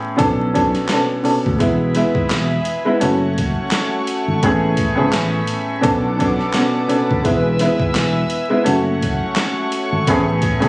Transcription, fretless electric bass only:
0.20 B1
1.46 D2
1.61 E1
2.15 G#1
2.32 E1
3.02 F#1
4.28 G#1
4.43 A1
4.98 C#2
5.14 A1
5.85 B1
7.11 D2
7.25 E1
7.80 G#1
7.96 E1
8.67 F#1
9.92 G#1
10.08 A1
10.63 C#2

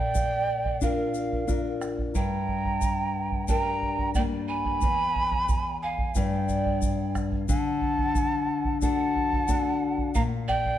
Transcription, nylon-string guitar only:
Already playing: A#2
0.81 D4 F4 A#4
1.47 D4 F4 A#4
2.15 G2
3.49 D4 G4 A#4
4.15 G3 A#3 D4
4.82 E2
6.16 G2
7.49 D3
8.82 D4 F#4 A4
9.49 D4 F#4 A4
10.15 A#2

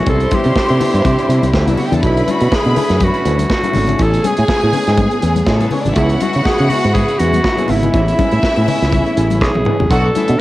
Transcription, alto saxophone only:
0.09 A4
0.35 G4
2.06 E4
2.30 F#4
2.54 G#4
3.04 F#4
3.53 F#4
4.02 A4
4.27 G#4
5.97 E4
6.22 F#4
6.46 G#4
6.69 F#4
6.94 G#4
7.19 F#4
7.70 E4
9.44 G#4
9.91 A4

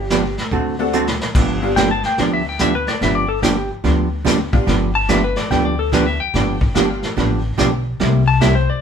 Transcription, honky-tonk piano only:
0.79 A3 C4 D4 F#4 A4
1.62 G3 B3 D4 F4 G4
4.52 G3 B3 D4 F4 G4
6.75 G3 B3 D4 F4 G4

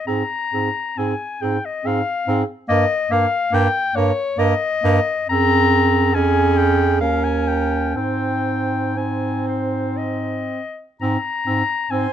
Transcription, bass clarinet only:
0.07 G#2
0.53 G#2
0.98 G#2
1.42 G#2
1.86 G#2
2.28 G#2
2.70 G2
3.11 G2
3.52 G2
3.95 G2
4.38 G2
4.84 G2
5.29 F#2
6.15 F2
7.01 D#2
7.95 G#2
11.02 G#2
11.46 G#2
11.91 G#2

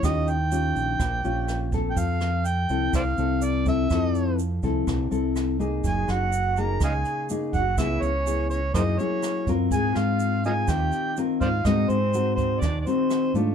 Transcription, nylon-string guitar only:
0.04 D#3 C#4 F4 G4
0.52 C#4 F4 G4
1.01 A#2
1.24 C#4 F4 G4
1.73 C4 A4
1.97 F3
2.70 C4 E4 A4
2.94 C3
3.18 C4 E4 A4
3.66 C4 E4 A4
3.91 F3 C4 E4 A4
4.63 C4 E4 A4
4.87 C3
5.11 C4 E4 A4
5.59 A#3 D#4 G#4
5.85 F#3
6.58 A#3 D#4 G#4
6.82 C#3
7.30 A#3 D#4 G#4
7.79 C#3 B3 E4 G#4
8.27 B3 E4 G#4
8.76 F#3 A#3 E4 G#4
9.00 A#3 E4 G#4
9.48 C4 F4 A#4
9.73 G#3
10.45 C4 F4 A#4
10.69 D#3
11.18 C4 F4 A#4
11.66 G#3 C4 F#4 A#4
12.14 C4 F#4 A#4
12.63 D#3
12.87 C4 F#4 A#4
13.35 A3 D4 F4

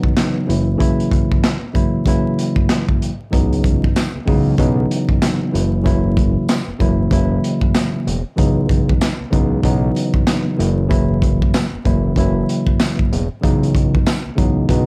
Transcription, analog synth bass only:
0.49 F#1
3.33 C#2
4.15 C#2
4.28 C#2
4.58 B1
5.55 F#1
6.68 F#1
6.81 F#1
7.11 F#1
8.07 E1
8.38 C#2
9.21 C#2
9.33 C#2
9.64 B1
10.59 F#1
11.73 F#1
11.86 F#1
12.16 F#1
13.12 E1
13.44 C#2
14.26 C#2
14.38 C#2
14.69 B1

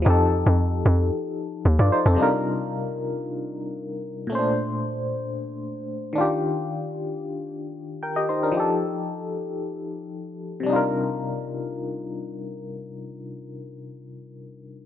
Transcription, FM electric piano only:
0.02 F3 D#4
0.07 G4 A4
1.79 F4 D5
1.92 D#4 C5
2.06 C4 A4
2.15 C3 G3 D4
2.20 D#4 F4 A#4
4.27 A#2 A3
4.32 C#4 C5
4.39 D4
6.13 D#3 D4
6.18 F4 G4
8.03 A#4 G5
8.16 G4 D#5
8.29 D#4 C5
8.43 D4 A#4
8.52 F3 D#4
8.57 G4 A4
10.60 C3 G3
10.67 D4 D#4
10.73 F4 A#4

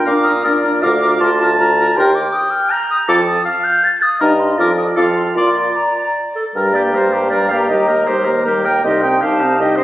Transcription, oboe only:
0.05 A#4
0.23 A#4
0.44 A#4
0.63 A#4
0.83 A#4
1.03 A#4
1.22 A#4
1.42 A#4
1.61 A#4
1.80 A#4
1.99 A#4
3.09 A4
4.20 A#4
4.60 A#4
4.96 A4
5.37 D5
6.56 A#4
6.75 G4
6.94 A#4
7.13 G4
7.31 A#4
7.51 G4
7.69 G4
7.88 A#4
8.07 G4
8.25 A#4
8.45 G4
8.65 A#4
8.85 G4
9.02 D#4
9.22 G4
9.41 D#4
9.60 G4
9.77 D#4

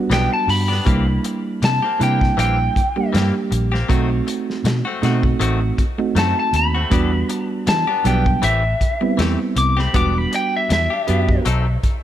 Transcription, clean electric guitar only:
0.10 E3 B3 D4 G4
0.31 muted clean electric guitar stroke
0.48 muted clean electric guitar stroke
0.68 B3 D4 G4
0.85 E3 A#3 C4 G4
1.07 muted clean electric guitar stroke
1.25 muted clean electric guitar stroke
1.62 muted clean electric guitar stroke
1.82 A#3 C4 G4
2.00 E3 A#3 C4 G4
2.21 muted clean electric guitar stroke
2.37 E3 A#3 C4 G4
2.58 muted clean electric guitar stroke
2.96 muted clean electric guitar stroke
3.13 E3 A#3 C4 G4
3.34 muted clean electric guitar stroke
3.51 muted clean electric guitar stroke
3.72 A#3 C4 G4
3.89 D#3 A3 C4 F#4
4.10 muted clean electric guitar stroke
4.27 muted clean electric guitar stroke
4.65 muted clean electric guitar stroke
4.85 A3 C4 F#4
5.02 D#3 A3 C4 F#4
5.24 muted clean electric guitar stroke
5.40 D#3 A3 C4 F#4
5.61 muted clean electric guitar stroke
5.99 muted clean electric guitar stroke
6.15 D#3 A3 C4 F#4
6.37 muted clean electric guitar stroke
6.54 muted clean electric guitar stroke
6.75 A3 C4 F#4
6.91 E3 B3 D4 G4
7.12 muted clean electric guitar stroke
7.29 muted clean electric guitar stroke
7.67 muted clean electric guitar stroke
7.87 B3 D4 G4
8.04 E3 B3 D4 G4
8.26 muted clean electric guitar stroke
8.42 E3 A3 C4 G4
8.63 muted clean electric guitar stroke
9.01 muted clean electric guitar stroke
9.17 E3 A3 C4 G4
9.39 muted clean electric guitar stroke
9.56 muted clean electric guitar stroke
9.77 A3 C4 G4
9.94 B3 D4 G4
10.15 muted clean electric guitar stroke
10.32 muted clean electric guitar stroke
10.69 muted clean electric guitar stroke
10.90 D4 G4
11.07 B3 D4 G4
11.29 muted clean electric guitar stroke
11.45 F#3 C4 D#4 A4
11.67 muted clean electric guitar stroke

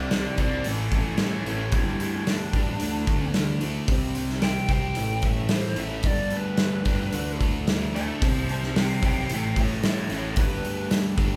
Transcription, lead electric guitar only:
Already playing: A4 D5
0.13 A4 D5
0.40 A4 D5
0.68 C#4 A4
0.95 C#4 A4
1.22 C#4 A4
1.49 E4 G4
1.76 E4 G4
2.01 E4 G4
2.29 D4
4.44 G5
4.71 G5
5.26 E5
5.53 C5
5.80 E5
6.07 D5
6.37 B4
7.95 E5 A5
8.22 C5 A5
8.51 C5 A5
8.79 E5 G5
9.07 E5 G5
9.35 E5 G5
9.61 C#5 E5
9.90 C#5 E5
10.15 C#5 E5
10.41 B4

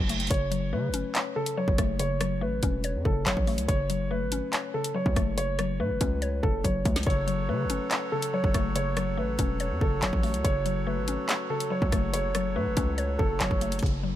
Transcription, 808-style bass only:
0.00 F#1
0.31 F#1
0.73 C#3
0.89 F#1
1.68 F#1
1.78 F#1
2.42 A1
2.63 E1
2.95 F#2
3.05 F#1
3.26 F#1
3.37 A1
3.58 C#2
3.69 F#1
4.21 G#1
5.06 C#2
5.17 F#1
5.80 A2
5.90 F#1
6.01 C#2
6.43 F#1
6.64 F#1
6.85 C#2
7.07 F#1
7.49 C#3
7.65 F#1
8.44 F#1
8.55 F#1
9.18 A1
9.39 E1
9.71 F#2
9.81 F#1
10.02 F#1
10.13 A1
10.34 C#2
10.45 F#1
10.97 G#1
11.82 C#2
11.93 F#1
12.56 A2
12.66 F#1
12.77 C#2
13.19 F#1
13.40 F#1
13.51 F#1
13.83 F#1

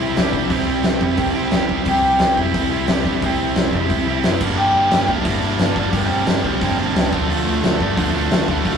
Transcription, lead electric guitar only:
Already playing: E4 E5
0.16 D4 D5
0.51 C4 C5
1.02 C4 C5
1.88 G4 G5
2.38 E4 E5
2.90 D4 D5
3.23 C4 C5
3.72 E4 E5
4.57 G4 G5
5.09 E4 E5
5.61 D4 D5
5.94 C4 C5
6.45 C4 C5
7.30 F4 F5
7.81 D4 D5
7.97 F4 F5
8.48 E4 E5
8.65 F4 F5

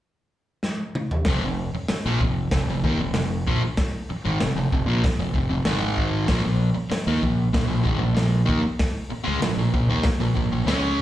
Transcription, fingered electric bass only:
1.27 F1
1.42 F1
1.75 muted fingered electric bass stroke
1.90 muted fingered electric bass stroke
2.06 A#1
2.20 F1
2.52 F1
2.67 F1
2.84 D#2
2.98 F1
3.15 F1
3.47 A#1
3.63 muted fingered electric bass stroke
4.11 muted fingered electric bass stroke
4.26 G#1
4.41 F1
4.56 F1
4.73 F1
4.86 A#1
5.04 muted fingered electric bass stroke
5.19 F1
5.35 F1
5.50 F1
5.66 G#1
6.28 A#1
6.46 A#1
6.77 muted fingered electric bass stroke
6.92 muted fingered electric bass stroke
7.07 D#2
7.24 A#1
7.54 A#1
7.70 A#1
7.86 G#1
8.00 A#1
8.17 A#1
8.49 D#2
8.66 muted fingered electric bass stroke
9.13 muted fingered electric bass stroke
9.28 C#2
9.43 A#1
9.57 A#1
9.74 A#1
9.88 D#2
10.05 muted fingered electric bass stroke
10.20 A#1
10.37 A#1
10.51 A#1
10.66 C#2

